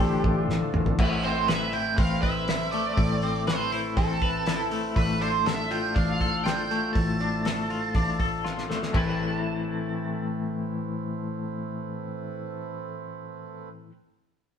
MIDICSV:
0, 0, Header, 1, 6, 480
1, 0, Start_track
1, 0, Key_signature, 0, "minor"
1, 0, Tempo, 497512
1, 951, Time_signature, 4, 2, 24, 8
1, 14073, End_track
2, 0, Start_track
2, 0, Title_t, "Lead electric guitar"
2, 0, Program_c, 0, 29
2, 0, Note_on_c, 0, 67, 77
2, 439, Note_off_c, 0, 67, 0
2, 968, Note_on_c, 0, 71, 85
2, 1198, Note_off_c, 0, 71, 0
2, 1202, Note_on_c, 0, 72, 80
2, 1434, Note_on_c, 0, 76, 89
2, 1442, Note_off_c, 0, 72, 0
2, 1671, Note_on_c, 0, 79, 92
2, 1678, Note_off_c, 0, 76, 0
2, 1895, Note_on_c, 0, 77, 93
2, 1916, Note_off_c, 0, 79, 0
2, 2135, Note_off_c, 0, 77, 0
2, 2139, Note_on_c, 0, 76, 89
2, 2589, Note_off_c, 0, 76, 0
2, 2617, Note_on_c, 0, 74, 87
2, 3302, Note_off_c, 0, 74, 0
2, 3349, Note_on_c, 0, 72, 80
2, 3579, Note_off_c, 0, 72, 0
2, 3590, Note_on_c, 0, 72, 77
2, 3654, Note_off_c, 0, 72, 0
2, 3827, Note_on_c, 0, 69, 65
2, 4508, Note_off_c, 0, 69, 0
2, 4785, Note_on_c, 0, 71, 71
2, 5031, Note_off_c, 0, 71, 0
2, 5034, Note_on_c, 0, 72, 75
2, 5266, Note_on_c, 0, 76, 78
2, 5277, Note_off_c, 0, 72, 0
2, 5506, Note_on_c, 0, 79, 82
2, 5513, Note_off_c, 0, 76, 0
2, 5736, Note_on_c, 0, 77, 83
2, 5754, Note_off_c, 0, 79, 0
2, 6212, Note_on_c, 0, 79, 81
2, 6237, Note_off_c, 0, 77, 0
2, 6681, Note_off_c, 0, 79, 0
2, 6685, Note_on_c, 0, 81, 86
2, 8341, Note_off_c, 0, 81, 0
2, 8633, Note_on_c, 0, 81, 70
2, 13207, Note_off_c, 0, 81, 0
2, 14073, End_track
3, 0, Start_track
3, 0, Title_t, "Clean electric guitar"
3, 0, Program_c, 1, 27
3, 0, Note_on_c, 1, 45, 67
3, 0, Note_on_c, 1, 50, 72
3, 0, Note_on_c, 1, 57, 70
3, 0, Note_on_c, 1, 62, 68
3, 0, Note_on_c, 1, 65, 80
3, 0, Note_on_c, 1, 69, 91
3, 935, Note_off_c, 1, 69, 0
3, 940, Note_off_c, 1, 65, 0
3, 941, Note_off_c, 1, 62, 0
3, 944, Note_off_c, 1, 57, 0
3, 946, Note_off_c, 1, 50, 0
3, 948, Note_off_c, 1, 45, 0
3, 962, Note_on_c, 1, 45, 69
3, 1199, Note_on_c, 1, 60, 63
3, 1433, Note_on_c, 1, 71, 71
3, 1673, Note_on_c, 1, 64, 62
3, 1907, Note_off_c, 1, 60, 0
3, 1918, Note_on_c, 1, 60, 63
3, 2139, Note_off_c, 1, 71, 0
3, 2151, Note_on_c, 1, 71, 68
3, 2180, Note_off_c, 1, 45, 0
3, 2388, Note_off_c, 1, 64, 0
3, 2400, Note_on_c, 1, 64, 61
3, 2638, Note_on_c, 1, 57, 67
3, 2876, Note_on_c, 1, 45, 71
3, 3106, Note_off_c, 1, 60, 0
3, 3118, Note_on_c, 1, 60, 62
3, 3342, Note_off_c, 1, 71, 0
3, 3353, Note_on_c, 1, 71, 67
3, 3581, Note_off_c, 1, 64, 0
3, 3592, Note_on_c, 1, 64, 60
3, 3818, Note_off_c, 1, 60, 0
3, 3829, Note_on_c, 1, 60, 63
3, 4063, Note_off_c, 1, 71, 0
3, 4074, Note_on_c, 1, 71, 66
3, 4103, Note_off_c, 1, 45, 0
3, 4103, Note_off_c, 1, 57, 0
3, 4301, Note_off_c, 1, 64, 0
3, 4312, Note_on_c, 1, 64, 65
3, 4551, Note_on_c, 1, 57, 63
3, 4787, Note_off_c, 1, 60, 0
3, 4789, Note_off_c, 1, 64, 0
3, 4790, Note_off_c, 1, 71, 0
3, 4794, Note_on_c, 1, 45, 70
3, 5031, Note_on_c, 1, 62, 62
3, 5272, Note_on_c, 1, 69, 67
3, 5510, Note_on_c, 1, 65, 60
3, 5734, Note_off_c, 1, 62, 0
3, 5745, Note_on_c, 1, 62, 57
3, 5989, Note_off_c, 1, 69, 0
3, 5993, Note_on_c, 1, 69, 62
3, 6220, Note_off_c, 1, 65, 0
3, 6232, Note_on_c, 1, 65, 60
3, 6471, Note_off_c, 1, 57, 0
3, 6475, Note_on_c, 1, 57, 64
3, 6704, Note_off_c, 1, 45, 0
3, 6708, Note_on_c, 1, 45, 64
3, 6941, Note_off_c, 1, 62, 0
3, 6953, Note_on_c, 1, 62, 56
3, 7187, Note_off_c, 1, 69, 0
3, 7199, Note_on_c, 1, 69, 58
3, 7420, Note_off_c, 1, 65, 0
3, 7432, Note_on_c, 1, 65, 58
3, 7665, Note_off_c, 1, 62, 0
3, 7674, Note_off_c, 1, 57, 0
3, 7676, Note_on_c, 1, 62, 57
3, 7902, Note_off_c, 1, 69, 0
3, 7911, Note_off_c, 1, 45, 0
3, 7914, Note_on_c, 1, 69, 62
3, 8136, Note_off_c, 1, 65, 0
3, 8148, Note_on_c, 1, 65, 56
3, 8389, Note_on_c, 1, 57, 60
3, 8617, Note_on_c, 1, 45, 73
3, 8625, Note_off_c, 1, 57, 0
3, 8628, Note_on_c, 1, 52, 80
3, 8630, Note_off_c, 1, 65, 0
3, 8634, Note_off_c, 1, 69, 0
3, 8635, Note_off_c, 1, 62, 0
3, 8637, Note_on_c, 1, 57, 76
3, 8643, Note_on_c, 1, 60, 82
3, 8649, Note_on_c, 1, 64, 86
3, 8657, Note_on_c, 1, 71, 92
3, 13405, Note_off_c, 1, 45, 0
3, 13416, Note_off_c, 1, 52, 0
3, 13425, Note_off_c, 1, 57, 0
3, 13431, Note_off_c, 1, 60, 0
3, 13436, Note_off_c, 1, 64, 0
3, 13445, Note_off_c, 1, 71, 0
3, 14073, End_track
4, 0, Start_track
4, 0, Title_t, "Harmonium"
4, 0, Program_c, 2, 20
4, 0, Note_on_c, 2, 53, 78
4, 0, Note_on_c, 2, 62, 73
4, 0, Note_on_c, 2, 69, 86
4, 913, Note_off_c, 2, 62, 0
4, 914, Note_off_c, 2, 53, 0
4, 915, Note_off_c, 2, 69, 0
4, 960, Note_on_c, 2, 60, 69
4, 961, Note_on_c, 2, 71, 78
4, 962, Note_on_c, 2, 57, 71
4, 2852, Note_off_c, 2, 71, 0
4, 2881, Note_on_c, 2, 69, 80
4, 4751, Note_off_c, 2, 60, 0
4, 4752, Note_off_c, 2, 57, 0
4, 4793, Note_on_c, 2, 62, 66
4, 4796, Note_on_c, 2, 53, 71
4, 6693, Note_off_c, 2, 62, 0
4, 6716, Note_on_c, 2, 76, 64
4, 8599, Note_off_c, 2, 53, 0
4, 8601, Note_off_c, 2, 69, 0
4, 8617, Note_off_c, 2, 76, 0
4, 8637, Note_on_c, 2, 57, 67
4, 8637, Note_on_c, 2, 60, 63
4, 8639, Note_on_c, 2, 71, 69
4, 13209, Note_off_c, 2, 57, 0
4, 13209, Note_off_c, 2, 60, 0
4, 13210, Note_off_c, 2, 71, 0
4, 14073, End_track
5, 0, Start_track
5, 0, Title_t, "Picked electric bass"
5, 0, Program_c, 3, 34
5, 0, Note_on_c, 3, 33, 86
5, 215, Note_off_c, 3, 33, 0
5, 234, Note_on_c, 3, 33, 94
5, 453, Note_off_c, 3, 33, 0
5, 468, Note_on_c, 3, 33, 85
5, 580, Note_off_c, 3, 33, 0
5, 709, Note_on_c, 3, 33, 82
5, 929, Note_off_c, 3, 33, 0
5, 952, Note_on_c, 3, 33, 88
5, 1870, Note_off_c, 3, 33, 0
5, 1914, Note_on_c, 3, 33, 84
5, 2831, Note_off_c, 3, 33, 0
5, 2871, Note_on_c, 3, 33, 86
5, 3789, Note_off_c, 3, 33, 0
5, 3828, Note_on_c, 3, 33, 83
5, 4748, Note_off_c, 3, 33, 0
5, 4789, Note_on_c, 3, 33, 80
5, 5710, Note_off_c, 3, 33, 0
5, 5753, Note_on_c, 3, 33, 81
5, 6673, Note_off_c, 3, 33, 0
5, 6714, Note_on_c, 3, 33, 82
5, 7634, Note_off_c, 3, 33, 0
5, 7670, Note_on_c, 3, 33, 74
5, 8593, Note_off_c, 3, 33, 0
5, 8632, Note_on_c, 3, 33, 67
5, 13381, Note_off_c, 3, 33, 0
5, 14073, End_track
6, 0, Start_track
6, 0, Title_t, "Drums"
6, 0, Note_on_c, 9, 46, 53
6, 93, Note_off_c, 9, 46, 0
6, 234, Note_on_c, 9, 36, 88
6, 330, Note_off_c, 9, 36, 0
6, 481, Note_on_c, 9, 38, 57
6, 577, Note_off_c, 9, 38, 0
6, 712, Note_on_c, 9, 45, 88
6, 808, Note_off_c, 9, 45, 0
6, 832, Note_on_c, 9, 43, 82
6, 928, Note_off_c, 9, 43, 0
6, 950, Note_on_c, 9, 49, 85
6, 952, Note_on_c, 9, 36, 102
6, 1047, Note_off_c, 9, 49, 0
6, 1049, Note_off_c, 9, 36, 0
6, 1192, Note_on_c, 9, 46, 46
6, 1288, Note_off_c, 9, 46, 0
6, 1430, Note_on_c, 9, 46, 60
6, 1439, Note_on_c, 9, 38, 103
6, 1526, Note_off_c, 9, 46, 0
6, 1536, Note_off_c, 9, 38, 0
6, 1669, Note_on_c, 9, 46, 44
6, 1766, Note_off_c, 9, 46, 0
6, 1908, Note_on_c, 9, 46, 61
6, 1911, Note_on_c, 9, 36, 100
6, 2005, Note_off_c, 9, 46, 0
6, 2008, Note_off_c, 9, 36, 0
6, 2152, Note_on_c, 9, 36, 71
6, 2153, Note_on_c, 9, 46, 45
6, 2248, Note_off_c, 9, 36, 0
6, 2249, Note_off_c, 9, 46, 0
6, 2391, Note_on_c, 9, 46, 55
6, 2400, Note_on_c, 9, 38, 101
6, 2487, Note_off_c, 9, 46, 0
6, 2497, Note_off_c, 9, 38, 0
6, 2628, Note_on_c, 9, 46, 46
6, 2725, Note_off_c, 9, 46, 0
6, 2870, Note_on_c, 9, 36, 99
6, 2870, Note_on_c, 9, 46, 61
6, 2967, Note_off_c, 9, 36, 0
6, 2967, Note_off_c, 9, 46, 0
6, 3107, Note_on_c, 9, 46, 45
6, 3204, Note_off_c, 9, 46, 0
6, 3350, Note_on_c, 9, 46, 59
6, 3360, Note_on_c, 9, 38, 102
6, 3447, Note_off_c, 9, 46, 0
6, 3456, Note_off_c, 9, 38, 0
6, 3592, Note_on_c, 9, 46, 49
6, 3688, Note_off_c, 9, 46, 0
6, 3830, Note_on_c, 9, 36, 98
6, 3831, Note_on_c, 9, 46, 62
6, 3926, Note_off_c, 9, 36, 0
6, 3928, Note_off_c, 9, 46, 0
6, 4069, Note_on_c, 9, 36, 73
6, 4069, Note_on_c, 9, 46, 47
6, 4165, Note_off_c, 9, 46, 0
6, 4166, Note_off_c, 9, 36, 0
6, 4307, Note_on_c, 9, 46, 65
6, 4317, Note_on_c, 9, 38, 96
6, 4404, Note_off_c, 9, 46, 0
6, 4413, Note_off_c, 9, 38, 0
6, 4547, Note_on_c, 9, 46, 50
6, 4643, Note_off_c, 9, 46, 0
6, 4787, Note_on_c, 9, 36, 92
6, 4790, Note_on_c, 9, 46, 61
6, 4884, Note_off_c, 9, 36, 0
6, 4886, Note_off_c, 9, 46, 0
6, 5031, Note_on_c, 9, 46, 47
6, 5128, Note_off_c, 9, 46, 0
6, 5270, Note_on_c, 9, 46, 60
6, 5280, Note_on_c, 9, 38, 101
6, 5366, Note_off_c, 9, 46, 0
6, 5376, Note_off_c, 9, 38, 0
6, 5511, Note_on_c, 9, 46, 43
6, 5607, Note_off_c, 9, 46, 0
6, 5749, Note_on_c, 9, 36, 93
6, 5754, Note_on_c, 9, 46, 59
6, 5846, Note_off_c, 9, 36, 0
6, 5851, Note_off_c, 9, 46, 0
6, 5990, Note_on_c, 9, 36, 73
6, 5996, Note_on_c, 9, 46, 45
6, 6086, Note_off_c, 9, 36, 0
6, 6093, Note_off_c, 9, 46, 0
6, 6228, Note_on_c, 9, 46, 53
6, 6237, Note_on_c, 9, 38, 91
6, 6324, Note_off_c, 9, 46, 0
6, 6334, Note_off_c, 9, 38, 0
6, 6475, Note_on_c, 9, 46, 43
6, 6572, Note_off_c, 9, 46, 0
6, 6709, Note_on_c, 9, 36, 93
6, 6712, Note_on_c, 9, 46, 53
6, 6806, Note_off_c, 9, 36, 0
6, 6809, Note_off_c, 9, 46, 0
6, 6949, Note_on_c, 9, 46, 38
6, 7045, Note_off_c, 9, 46, 0
6, 7189, Note_on_c, 9, 46, 59
6, 7199, Note_on_c, 9, 38, 90
6, 7285, Note_off_c, 9, 46, 0
6, 7295, Note_off_c, 9, 38, 0
6, 7430, Note_on_c, 9, 46, 44
6, 7527, Note_off_c, 9, 46, 0
6, 7665, Note_on_c, 9, 46, 54
6, 7669, Note_on_c, 9, 36, 88
6, 7762, Note_off_c, 9, 46, 0
6, 7766, Note_off_c, 9, 36, 0
6, 7907, Note_on_c, 9, 46, 46
6, 7908, Note_on_c, 9, 36, 71
6, 8004, Note_off_c, 9, 46, 0
6, 8005, Note_off_c, 9, 36, 0
6, 8157, Note_on_c, 9, 38, 44
6, 8254, Note_off_c, 9, 38, 0
6, 8278, Note_on_c, 9, 38, 48
6, 8374, Note_off_c, 9, 38, 0
6, 8399, Note_on_c, 9, 38, 69
6, 8495, Note_off_c, 9, 38, 0
6, 8517, Note_on_c, 9, 38, 66
6, 8613, Note_off_c, 9, 38, 0
6, 8628, Note_on_c, 9, 36, 74
6, 8628, Note_on_c, 9, 43, 73
6, 8628, Note_on_c, 9, 57, 66
6, 8725, Note_off_c, 9, 36, 0
6, 8725, Note_off_c, 9, 43, 0
6, 8725, Note_off_c, 9, 57, 0
6, 14073, End_track
0, 0, End_of_file